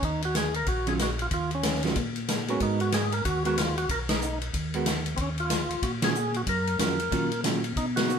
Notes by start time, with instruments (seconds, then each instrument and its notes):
0.02 tonewheel organ D#2 D#4, kick, ride
0.22 tonewheel organ F#4, ride
0.35 tonewheel organ G#4, snare, hi-hat pedal, ride
0.54 tonewheel organ A#4, ride
0.67 tonewheel organ A#1 F#4, kick, ride
0.86 hollow-body jazz guitar D#3 F#3 C#4 F4, tonewheel organ G#4, ride
0.99 tonewheel organ F#4, snare, hi-hat pedal, ride
1.19 tonewheel organ F4, ride
1.31 tonewheel organ D#2 F4, kick, ride
1.51 tonewheel organ C#4, ride
1.63 snare, hi-hat pedal, ride
1.74 snare
1.83 hollow-body jazz guitar D#3 F#3 C#4 F4, snare, ride
1.96 tonewheel organ A#2, kick, ride
2.16 ride
2.28 snare, hi-hat pedal, ride
2.48 hollow-body jazz guitar G#3 B3 F#4 A#4, tonewheel organ C#4, ride
2.60 tonewheel organ G#2 D#4, kick, ride
2.80 tonewheel organ F#4, ride
2.92 tonewheel organ G#4, snare, hi-hat pedal, ride
3.12 tonewheel organ A#4, ride
3.25 tonewheel organ D#2 F#4, kick, ride
3.45 hollow-body jazz guitar G#3 B3 F#4 A#4, tonewheel organ F#4, ride
3.57 tonewheel organ F4, snare, hi-hat pedal, ride
3.78 tonewheel organ F#4, ride
3.89 tonewheel organ B1 A#4, kick, ride
4.09 tonewheel organ D#4, snare, ride
4.22 hi-hat pedal
4.42 ride
4.54 tonewheel organ D#2, kick, ride
4.74 hollow-body jazz guitar G#3 B3 F#4 A#4, ride
4.86 snare, hi-hat pedal, ride
5.06 ride
5.16 tonewheel organ D#2 C4, kick, ride
5.21 tonewheel organ C#4
5.38 tonewheel organ F4, ride
5.50 snare, hi-hat pedal, ride
5.69 tonewheel organ D#2, ride
5.82 tonewheel organ A#2 F#4, kick, ride
6.02 hollow-body jazz guitar D#3 F#3 C#4 F4, tonewheel organ G#4, snare, ride
6.15 hi-hat pedal
6.34 tonewheel organ F#4, ride
6.47 tonewheel organ F#2 A#4, kick, ride
6.67 ride
6.79 tonewheel organ F2, hollow-body jazz guitar D#3 F#3 C#4 F4, snare, hi-hat pedal, ride
7.00 ride
7.11 tonewheel organ A#2, hollow-body jazz guitar D#3 F#3 C#4 F4, kick, ride
7.32 ride
7.44 hollow-body jazz guitar D#3 F#3 C#4 F4, snare, hi-hat pedal, ride
7.64 ride
7.76 tonewheel organ B2 D#4, kick, ride
7.96 tonewheel organ F#4, snare, ride
8.08 hollow-body jazz guitar A#3 D#4 F#4, hi-hat pedal